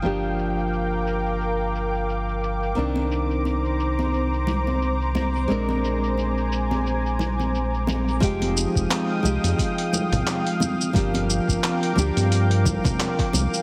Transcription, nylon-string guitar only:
X:1
M:4/4
L:1/8
Q:"Swing 16ths" 1/4=88
K:Fdor
V:1 name="Nylon-string guitar"
[F,B,DG]8 | [E,CDB]8 | [A,CDB]8 | [F,A,EG]3 [F,A,EG]4- [F,A,EG] |
[F,B,DG]3 [F,B,DG]4- [F,B,DG] |]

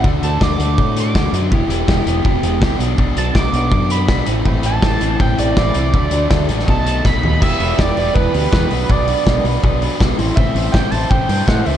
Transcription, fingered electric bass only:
X:1
M:4/4
L:1/8
Q:1/4=163
K:Em
V:1 name="Fingered electric bass" clef=bass
D,, D,, D,, D,, A,,2 D,, F,, | E,,, E,,, E,,, E,,, E,,, E,,, C,, B,,, | B,,, B,,, B,,, B,,, F,,2 B,,, A,,, | A,,, A,,, A,,, A,,, A,,, A,,, A,,, C,, |
D,, D,, D,, A,,, B,,,2 B,,, ^D,, | E,,, E,,, E,,, E,,, E,,, D,, E,, B,,, | B,,,2 B,,, B,,, B,,,2 B,,, A,,, | A,,, A,,, A,,, A,,, A,,, G,, A,, ^C,, |]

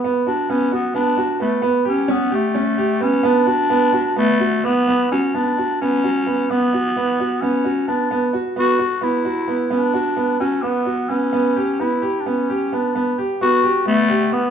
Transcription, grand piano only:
X:1
M:7/8
L:1/8
Q:1/4=131
K:Bm
V:1 name="Grand piano"
B, F B, F B, F B, | B, G C G C G B, | B, F B, F B, F B, | B, F B, F B, F B, |
B, F B, F B, F B, | B, F B, F B, F B, | B, F B, F B, F B, | B, G B, G B, G B, |
B, G B, G B, G B, |]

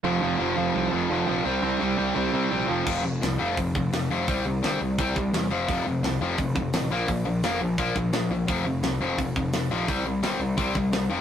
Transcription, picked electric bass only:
X:1
M:4/4
L:1/8
Q:1/4=171
K:F
V:1 name="Picked electric bass" clef=bass
F,,, F,,, F,,, F,,, C,, F,,, F,,, B,,, | C,, C,, C,, C,, C,, C, B,,, F,,, | F,,, F,,, C,, F,,, F,,, F,,, F,,, F,,, | C,, C,, G,,, C,, C,, C,, E,, F,,, |
F,,, F,,, C,, F,,, F,,, F,,, A,,, B,,, | B,,, B,,, F,,, B,,, B,,, B,,, B,,, B,,, | F,,, F,,, C,, F,,, F,,, F,,, F,,, B,,, | C,, C,, G,,, C,, C,, C,, C,, F,,, |]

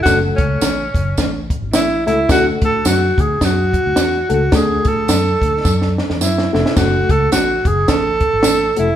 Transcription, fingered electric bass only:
X:1
M:4/4
L:1/16
Q:"Swing" 1/4=107
K:F#m
V:1 name="Fingered electric bass" clef=bass
F,,,2 C,,2 A,,,2 F,,,2 A,,,3 G,,, A,,,2 C,,2 | D,,2 A,,2 F,,2 D,,2 F,,3 D,, E,,2 C,,2 | D,,2 A,,2 F,,2 D,,2 F,,3 E,, F,,2 ^E,,, z | F,,,2 C,,2 A,,,2 F,,,2 A,,,3 G,,, A,,,2 ^E,,,2 |]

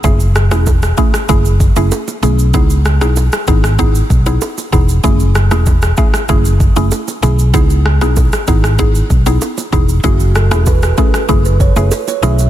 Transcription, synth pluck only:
X:1
M:4/4
L:1/16
Q:1/4=96
K:F#dor
V:1 name="Synth pluck"
[A,CEG]3 [A,CEG] z2 [A,CEG] z [A,CEG] z2 [A,CEG] z2 [A,CEG] z | [B,DEG]3 [B,DEG] z2 [B,DEG] z [B,DEG] z2 [B,DEG] z2 [B,DEG] z | [A,CEG]3 [A,CEG] z2 [A,CEG] z [A,CEG] z2 [A,CEG] z2 [A,CEG] z | [B,DEG]3 [B,DEG] z2 [B,DEG] z [B,DEG] z2 [B,DEG] z2 [B,DEG] z |
[A,CEG]3 [A,CEG] z2 [A,CEG] z [A,CEG] z2 [A,CEG] z2 [A,CEG] z |]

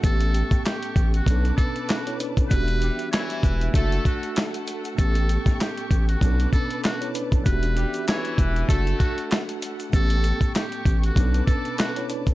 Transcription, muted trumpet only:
X:1
M:4/4
L:1/16
Q:"Swing 16ths" 1/4=97
K:Edor
V:1 name="Muted trumpet"
A4 G3 F3 A2 F2 z2 | B4 c2 B2 A2 F2 z4 | A4 G3 F3 A2 F2 z2 | B4 c2 B2 A2 F2 z4 |
A4 G3 F3 A2 F2 z2 |]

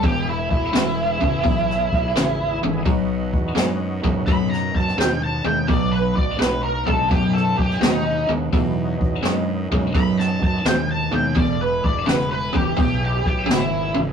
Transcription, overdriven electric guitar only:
X:1
M:4/4
L:1/8
Q:"Swing" 1/4=85
K:E
V:1 name="Overdriven electric guitar" clef=bass
[E,,B,,]2 [E,,C,] [E,,C,] [E,,B,,]2 [E,,C,] [E,,C,] | [B,,F,]2 [B,,G,] [B,,G,] [B,,F,]2 [B,,G,] [B,,G,] | [B,,F,]2 [B,,G,] [B,,G,] [B,,F,]2 [B,,G,] [B,,G,] | [B,,F,]2 [B,,G,] [B,,G,] [B,,F,]2 [B,,G,] [B,,G,] |
[E,,B,,]2 [E,,C,] [E,,C,] [E,,B,,]2 [E,,C,] [E,,C,] |]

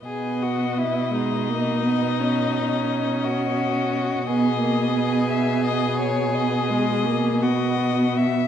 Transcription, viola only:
X:1
M:12/8
L:1/8
Q:3/8=57
K:B
V:1 name="Viola"
B,3 G, A, B, C6 | B, A, B,4 B, G, A, B,2 z |]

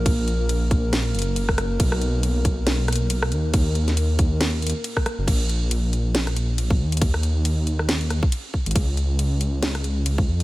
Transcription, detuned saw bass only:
X:1
M:4/4
L:1/16
Q:"Swing 16ths" 1/4=138
K:Abdor
V:1 name="Detuned saw bass" clef=bass
B,,,8- B,,,2 G,,,6 | =B,,,12- B,,,2 ^D,,2- | ^D,,8 D,,3 z4 ^F,,, | B,,,12- B,,,2 E,,2- |
E,,8 E,,3 z4 A,,, | D,,12- D,,2 F,,2 |]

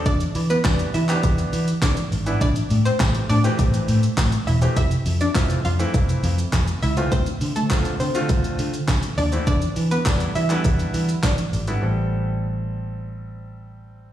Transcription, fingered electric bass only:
X:1
M:4/4
L:1/8
Q:1/4=102
K:Am
V:1 name="Fingered electric bass" clef=bass
E,, E, E,, E, E,, E, E, ^G,,, | A,,, A,, A,,, A,, A,,, A,, A,, E,,, | F,,, F,, F,,, F,, F,,, F,, F,, ^C,, | D,, D, D,, D, D,, D, D, ^D,, |
E,, E, E,, E, E,, E, E, ^G,,, | A,,,8 |]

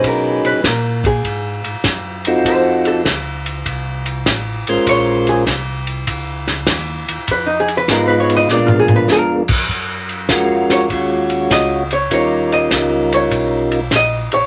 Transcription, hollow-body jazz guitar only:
X:1
M:4/4
L:1/16
Q:"Swing" 1/4=99
K:Bbm
V:1 name="Hollow-body jazz guitar"
B2 =B2 _B2 ^G4 z6 | c2 =A2 z12 | d2 A2 z12 | _c E A c B c d e =d F A c B2 z2 |
[K:Ebm] z6 d6 e2 d2 | d2 e4 d6 e2 d2 |]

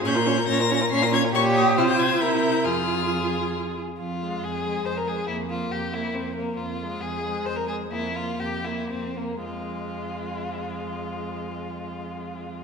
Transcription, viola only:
X:1
M:3/4
L:1/16
Q:1/4=135
K:Fm
V:1 name="Viola"
D F D F D F D F D F D F | G4 F4 =E4 | F8- F2 z2 | z2 A,4 A,4 A,2 |
B,2 B,4 B,4 B,2 | z2 A,4 A,4 A,2 | B,2 B,4 B,4 B,2 | A,12- |
A,12 |]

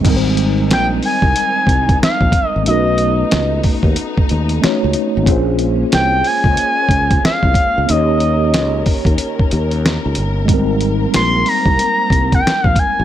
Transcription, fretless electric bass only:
X:1
M:4/4
L:1/16
Q:"Swing 16ths" 1/4=92
K:Ab
V:1 name="Fretless electric bass" clef=bass
A,,,4 B,,,2 z C,, z2 C,,2 z B,,, z A,,, | =B,,,4 ^C,,2 z ^D,, z2 D,,2 z C,, z A,,, | B,,,4 C,,2 z D,, z2 D,,2 z C,, z D,, | E,,4 D,,2 z E,, z2 E,,3 D,, G,,,2 |
A,,,4 B,,,2 z C,, z2 C,,2 z B,,, z B,,, |]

